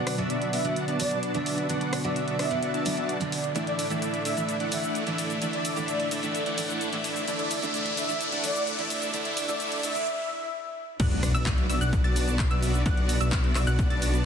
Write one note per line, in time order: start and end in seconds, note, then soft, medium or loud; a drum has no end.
0.00 3.52 B2 medium
0.00 0.15 D3 medium
0.00 0.15 F#3 medium
0.00 3.52 F#3 medium
0.00 0.15 B3 medium
0.00 0.16 B3 medium
0.00 0.16 D4 medium
0.00 7.24 D4 medium
0.00 0.16 F#4 medium
0.00 0.14 D5 medium
0.00 0.16 D5 medium
0.00 0.15 F#5 medium
0.00 riser medium
0.07 cross-stick medium
0.07 open hi-hat loud
0.18 0.62 D3 medium
0.18 0.62 F#3 medium
0.18 0.50 B3 loud
0.18 0.62 B3 medium
0.18 0.50 D4 medium
0.18 0.62 D4 loud
0.18 0.50 F#4 medium
0.18 0.50 D5 medium
0.18 0.50 E5 loud
0.18 closed hi-hat soft
0.30 closed hi-hat medium
0.42 closed hi-hat soft
0.53 0.63 B3 medium
0.53 0.63 D4 medium
0.53 0.63 F#4 medium
0.53 0.63 D5 medium
0.53 0.72 E5 medium
0.53 0.63 E5 medium
0.53 open hi-hat medium
0.64 0.97 D3 medium
0.64 0.97 F#3 medium
0.64 0.85 B3 loud
0.64 0.97 B3 medium
0.64 0.85 D4 medium
0.64 0.97 D4 medium
0.64 0.85 F#4 medium
0.64 0.85 D5 medium
0.64 0.85 F#5 loud
0.64 closed hi-hat soft
0.76 closed hi-hat medium
0.88 1.32 B3 medium
0.88 1.32 D4 medium
0.88 1.32 F#4 medium
0.88 1.32 D5 medium
0.88 1.32 A5 loud
0.88 closed hi-hat soft
0.99 1.12 D3 medium
0.99 1.12 F#3 medium
0.99 1.13 B3 medium
0.99 1.13 D4 medium
0.99 1.19 D5 medium
0.99 open hi-hat loud
1.11 closed hi-hat soft
1.23 closed hi-hat medium
1.34 1.66 D3 medium
1.34 1.67 F#3 medium
1.34 1.67 B3 medium
1.34 1.67 D4 medium
1.34 1.67 F#4 medium
1.34 1.67 D5 medium
1.34 1.67 E5 medium
1.34 closed hi-hat soft
1.46 open hi-hat medium
1.58 closed hi-hat soft
1.69 2.01 D3 medium
1.69 2.01 F#3 medium
1.69 2.02 B3 medium
1.69 2.02 D4 medium
1.69 2.02 F#4 medium
1.69 2.02 D5 medium
1.69 2.02 F#5 medium
1.69 closed hi-hat medium
1.81 closed hi-hat soft
1.93 cross-stick medium
1.93 open hi-hat loud
2.04 2.48 D3 medium
2.04 2.48 F#3 medium
2.04 2.36 B3 loud
2.04 2.48 B3 medium
2.04 2.36 D4 medium
2.04 2.48 D4 loud
2.04 2.36 F#4 medium
2.04 2.36 D5 medium
2.04 2.23 D5 medium
2.04 2.36 E5 loud
2.04 closed hi-hat soft
2.16 closed hi-hat medium
2.28 closed hi-hat soft
2.39 2.49 B3 medium
2.39 2.49 D4 medium
2.39 2.49 F#4 medium
2.39 2.49 D5 medium
2.39 2.49 E5 medium
2.39 3.04 E5 medium
2.39 cross-stick medium
2.39 open hi-hat medium
2.50 2.83 D3 medium
2.50 2.83 F#3 medium
2.50 2.71 B3 loud
2.50 2.83 B3 medium
2.50 2.71 D4 medium
2.50 2.83 D4 medium
2.50 2.71 F#4 medium
2.50 2.71 D5 medium
2.50 2.71 F#5 loud
2.50 closed hi-hat soft
2.63 closed hi-hat medium
2.74 3.18 B3 medium
2.74 3.18 D4 medium
2.74 3.18 F#4 medium
2.74 3.18 D5 medium
2.74 3.18 A5 loud
2.74 closed hi-hat soft
2.85 2.95 D3 medium
2.85 2.95 F#3 medium
2.85 2.96 B3 medium
2.85 2.96 D4 loud
2.85 open hi-hat loud
2.97 3.17 D3 medium
2.97 3.17 F#3 medium
2.97 3.17 B3 medium
2.97 3.17 D4 medium
2.97 closed hi-hat soft
3.09 closed hi-hat medium
3.20 3.52 D3 medium
3.20 3.53 F#3 medium
3.20 3.53 B3 medium
3.20 3.53 D4 loud
3.20 closed hi-hat soft
3.32 open hi-hat medium
3.44 closed hi-hat soft
3.55 3.87 A2 medium
3.55 10.03 A2 medium
3.55 3.87 D3 medium
3.55 3.88 E3 medium
3.55 10.03 E3 medium
3.55 3.88 A3 medium
3.55 3.88 D4 medium
3.55 3.88 E4 medium
3.55 3.88 D5 medium
3.55 3.88 E5 medium
3.55 closed hi-hat medium
3.55 shaker soft
3.67 3.86 D5 medium
3.67 closed hi-hat soft
3.79 open hi-hat loud
3.79 shaker medium
3.90 4.34 A2 medium
3.90 4.34 D3 medium
3.90 4.34 E3 medium
3.90 4.23 A3 loud
3.90 4.34 A3 medium
3.90 4.22 D4 medium
3.90 4.34 D4 loud
3.90 4.23 E4 medium
3.90 4.23 D5 medium
3.90 4.23 E5 loud
3.90 closed hi-hat soft
3.90 shaker soft
4.02 closed hi-hat medium
4.02 shaker soft
4.14 closed hi-hat soft
4.25 4.35 A3 medium
4.25 4.35 D4 medium
4.25 4.35 E4 medium
4.25 4.35 D5 medium
4.25 4.44 E5 medium
4.25 4.35 E5 medium
4.25 open hi-hat medium
4.25 shaker medium
4.36 4.69 A2 medium
4.36 4.69 D3 medium
4.36 4.69 E3 medium
4.36 4.57 A3 loud
4.36 4.69 A3 medium
4.36 4.57 D4 medium
4.36 4.69 D4 medium
4.36 4.57 E4 medium
4.36 4.57 D5 medium
4.36 4.57 E5 loud
4.36 closed hi-hat soft
4.36 shaker soft
4.49 closed hi-hat medium
4.49 shaker soft
4.60 5.04 A3 medium
4.60 5.04 D4 medium
4.60 5.04 E4 medium
4.60 5.04 D5 medium
4.60 5.04 F#5 loud
4.60 closed hi-hat soft
4.71 4.84 A2 medium
4.71 4.84 D3 medium
4.71 4.85 E3 medium
4.71 4.85 A3 medium
4.71 4.85 D4 medium
4.71 4.91 E5 medium
4.71 open hi-hat loud
4.71 shaker medium
4.83 closed hi-hat soft
4.83 shaker soft
4.95 closed hi-hat medium
4.95 shaker soft
5.06 5.39 A2 medium
5.06 5.39 D3 medium
5.06 5.39 E3 medium
5.06 5.39 A3 medium
5.06 5.39 D4 medium
5.06 5.39 E4 medium
5.06 5.39 D5 medium
5.06 5.39 E5 medium
5.06 closed hi-hat soft
5.18 open hi-hat medium
5.18 shaker medium
5.30 closed hi-hat soft
5.30 shaker soft
5.41 5.73 A2 medium
5.41 5.74 D3 medium
5.41 5.74 E3 medium
5.41 5.74 A3 medium
5.41 5.74 D4 medium
5.41 5.74 D4 loud
5.41 5.74 E4 medium
5.41 5.74 D5 medium
5.41 5.74 E5 medium
5.41 closed hi-hat medium
5.41 shaker soft
5.53 6.00 D5 medium
5.53 closed hi-hat soft
5.65 open hi-hat medium
5.65 shaker medium
5.76 6.20 A2 loud
5.76 6.20 D3 medium
5.76 6.20 E3 medium
5.76 6.09 A3 loud
5.76 6.20 A3 medium
5.76 6.09 D4 medium
5.76 6.20 D4 loud
5.76 6.09 E4 medium
5.76 6.09 D5 medium
5.76 6.09 E5 loud
5.76 closed hi-hat soft
5.76 shaker soft
5.88 closed hi-hat medium
5.88 shaker soft
6.00 closed hi-hat soft
6.11 6.21 A3 medium
6.11 6.21 D4 medium
6.11 6.21 E4 medium
6.11 6.21 D5 medium
6.11 6.21 E5 medium
6.11 open hi-hat medium
6.11 shaker medium
6.22 6.55 A2 medium
6.22 6.55 D3 medium
6.22 6.55 E3 medium
6.22 6.43 A3 loud
6.22 6.55 A3 medium
6.22 6.43 D4 medium
6.22 6.55 D4 medium
6.22 6.43 E4 medium
6.22 6.43 D5 medium
6.22 6.43 E5 loud
6.22 closed hi-hat soft
6.22 shaker soft
6.35 closed hi-hat medium
6.35 shaker soft
6.46 6.90 A3 medium
6.46 6.90 D4 medium
6.46 6.90 E4 medium
6.46 6.90 D5 medium
6.46 6.90 F#5 loud
6.46 closed hi-hat soft
6.57 6.70 A2 medium
6.57 6.70 D3 medium
6.57 6.71 E3 medium
6.57 6.71 A3 medium
6.57 6.71 D4 medium
6.57 open hi-hat loud
6.57 shaker medium
6.69 closed hi-hat soft
6.69 shaker soft
6.81 closed hi-hat medium
6.81 shaker soft
6.92 7.25 A2 medium
6.92 7.25 D3 medium
6.92 7.25 E3 medium
6.92 7.25 A3 medium
6.92 7.25 D4 medium
6.92 7.25 E4 medium
6.92 7.25 D5 medium
6.92 7.25 E5 medium
6.92 closed hi-hat soft
7.04 open hi-hat medium
7.04 shaker medium
7.16 closed hi-hat soft
7.16 shaker soft
7.27 10.04 D2 medium
7.27 7.59 D3 medium
7.27 7.60 E3 medium
7.27 7.60 A3 medium
7.27 7.60 D4 medium
7.27 7.60 D4 loud
7.27 7.60 E4 medium
7.27 7.60 D5 medium
7.27 7.60 E5 medium
7.27 closed hi-hat medium
7.27 shaker soft
7.39 7.58 D5 medium
7.39 closed hi-hat soft
7.51 open hi-hat loud
7.51 shaker medium
7.62 8.06 D3 loud
7.62 8.06 E3 medium
7.62 7.95 A3 loud
7.62 8.06 A3 medium
7.62 7.95 D4 medium
7.62 8.07 D4 loud
7.62 7.95 E4 medium
7.62 7.95 D5 medium
7.62 7.95 E5 loud
7.62 closed hi-hat soft
7.62 shaker soft
7.74 closed hi-hat medium
7.74 shaker soft
7.86 closed hi-hat soft
7.97 8.07 A3 medium
7.97 8.07 D4 medium
7.97 8.07 E4 medium
7.97 8.07 D5 medium
7.97 8.16 E5 medium
7.97 8.07 E5 medium
7.97 open hi-hat medium
7.97 shaker medium
8.08 8.41 D3 medium
8.08 8.41 E3 medium
8.08 8.29 A3 loud
8.08 8.41 A3 medium
8.08 8.29 D4 medium
8.08 8.41 D4 medium
8.08 8.29 E4 medium
8.08 8.29 D5 medium
8.08 8.29 E5 loud
8.08 closed hi-hat soft
8.08 shaker soft
8.21 closed hi-hat medium
8.21 shaker soft
8.32 8.76 A3 medium
8.32 8.76 D4 medium
8.32 8.76 E4 medium
8.32 8.76 D5 medium
8.32 8.76 F#5 loud
8.32 closed hi-hat soft
8.43 8.56 D3 medium
8.43 8.56 E3 medium
8.43 8.57 A3 medium
8.43 8.57 D4 loud
8.43 8.63 D5 medium
8.43 open hi-hat loud
8.43 shaker medium
8.55 closed hi-hat soft
8.55 shaker soft
8.67 closed hi-hat medium
8.67 shaker soft
8.78 9.11 D3 medium
8.78 9.11 E3 medium
8.78 9.11 A3 medium
8.78 9.11 D4 medium
8.78 9.11 E4 medium
8.78 9.11 D5 medium
8.78 9.11 E5 medium
8.78 closed hi-hat soft
8.90 open hi-hat medium
8.90 shaker medium
9.02 closed hi-hat soft
9.02 shaker soft
9.13 9.46 D3 medium
9.13 9.46 E3 medium
9.13 9.46 A3 medium
9.13 9.46 D4 medium
9.13 9.46 E4 medium
9.13 9.46 D5 medium
9.13 9.46 E5 medium
9.13 closed hi-hat medium
9.13 shaker soft
9.25 closed hi-hat soft
9.37 open hi-hat loud
9.37 shaker medium
9.48 9.92 D3 loud
9.48 9.92 E3 medium
9.48 9.81 A3 loud
9.48 9.92 A3 medium
9.48 9.81 D4 medium
9.48 9.93 D4 loud
9.48 9.81 E4 medium
9.48 9.81 D5 medium
9.48 9.67 D5 medium
9.48 9.81 E5 loud
9.48 closed hi-hat soft
9.48 shaker soft
9.60 closed hi-hat medium
9.60 shaker soft
9.72 closed hi-hat soft
9.83 9.93 A3 medium
9.83 9.93 D4 medium
9.83 9.93 E4 medium
9.83 9.93 D5 medium
9.83 10.48 E5 loud
9.83 9.93 E5 medium
9.83 open hi-hat medium
9.83 shaker medium
9.94 10.06 D3 medium
9.94 10.07 E3 medium
9.94 10.07 A3 loud
9.94 10.07 A3 medium
9.94 10.07 D4 medium
9.94 10.07 E4 medium
9.94 10.07 D5 medium
9.94 10.07 E5 loud
9.94 closed hi-hat soft
9.94 shaker soft
11.00 11.32 B1 loud
11.00 11.32 B3 medium
11.00 14.25 B3 medium
11.00 11.32 D4 medium
11.00 14.25 F#4 medium
11.00 11.32 F#4 medium
11.00 11.32 D5 medium
11.00 14.25 D5 medium
11.00 11.32 F#5 medium
11.00 11.32 F#6 medium
11.00 kick loud
11.00 closed hi-hat medium
11.00 crash loud
11.00 impact medium
11.00 shaker soft
11.11 closed hi-hat soft
11.23 cross-stick medium
11.23 open hi-hat loud
11.23 shaker medium
11.35 11.67 B1 loud
11.35 11.67 B3 loud
11.35 11.67 D4 medium
11.35 11.67 F#4 medium
11.35 11.67 D5 medium
11.35 11.67 E5 loud
11.35 11.67 E6 loud
11.35 closed hi-hat soft
11.35 shaker soft
11.46 kick loud
11.46 clap loud
11.46 closed hi-hat medium
11.46 shaker soft
11.58 closed hi-hat soft
11.69 11.79 B1 loud
11.69 11.79 B3 medium
11.69 11.79 D4 medium
11.69 11.79 F#4 medium
11.69 11.79 D5 medium
11.69 11.79 E5 medium
11.69 11.79 E6 medium
11.69 open hi-hat medium
11.69 shaker medium
11.81 12.02 B1 loud
11.81 12.02 B3 loud
11.81 12.02 D4 medium
11.81 12.02 F#4 medium
11.81 12.02 D5 medium
11.81 12.02 F#5 loud
11.81 12.02 F#6 loud
11.81 closed hi-hat soft
11.81 shaker soft
11.93 kick loud
11.93 closed hi-hat medium
11.93 shaker soft
12.04 12.49 B1 loud
12.04 12.48 B3 medium
12.04 12.48 D4 medium
12.04 12.48 F#4 medium
12.04 12.48 D5 medium
12.04 12.48 A5 loud
12.04 12.48 A6 loud
12.04 closed hi-hat soft
12.16 open hi-hat loud
12.16 shaker medium
12.28 closed hi-hat soft
12.28 shaker soft
12.39 kick loud
12.39 clap loud
12.39 closed hi-hat medium
12.39 shaker soft
12.51 12.83 B1 loud
12.51 12.83 B3 medium
12.51 12.83 D4 medium
12.51 12.83 F#4 medium
12.51 12.83 D5 medium
12.51 12.83 E5 medium
12.51 12.83 E6 medium
12.51 closed hi-hat soft
12.63 open hi-hat medium
12.63 shaker medium
12.74 closed hi-hat soft
12.74 shaker soft
12.86 13.18 B1 loud
12.86 13.18 B3 medium
12.86 13.18 D4 medium
12.86 13.18 F#4 medium
12.86 13.18 D5 medium
12.86 13.18 F#5 medium
12.86 13.18 F#6 medium
12.86 kick loud
12.86 closed hi-hat medium
12.86 shaker soft
12.97 closed hi-hat soft
13.09 open hi-hat loud
13.09 shaker medium
13.21 13.53 B1 loud
13.21 13.53 B3 loud
13.21 13.53 D4 medium
13.21 13.53 F#4 medium
13.21 13.53 D5 medium
13.21 13.53 E5 loud
13.21 13.53 E6 loud
13.21 closed hi-hat soft
13.21 shaker soft
13.32 kick loud
13.32 clap loud
13.32 closed hi-hat medium
13.32 shaker soft
13.44 closed hi-hat soft
13.55 13.65 B1 loud
13.55 13.65 B3 medium
13.55 13.65 D4 medium
13.55 13.65 F#4 medium
13.55 13.65 D5 medium
13.55 13.65 E5 medium
13.55 13.65 E6 medium
13.55 cross-stick medium
13.55 clap medium
13.55 open hi-hat medium
13.55 shaker medium
13.67 13.88 B1 loud
13.67 13.88 B3 loud
13.67 13.88 D4 medium
13.67 13.88 F#4 medium
13.67 13.88 D5 medium
13.67 13.88 F#5 loud
13.67 13.88 F#6 loud
13.67 closed hi-hat soft
13.67 shaker soft
13.79 kick loud
13.79 closed hi-hat medium
13.79 shaker soft
13.90 14.25 B1 loud
13.90 14.25 B3 medium
13.90 14.25 D4 medium
13.90 14.25 F#4 medium
13.90 14.25 D5 medium
13.90 14.25 A5 loud
13.90 14.25 A6 loud
13.90 closed hi-hat soft
14.02 open hi-hat loud
14.02 shaker medium
14.14 closed hi-hat soft
14.14 shaker soft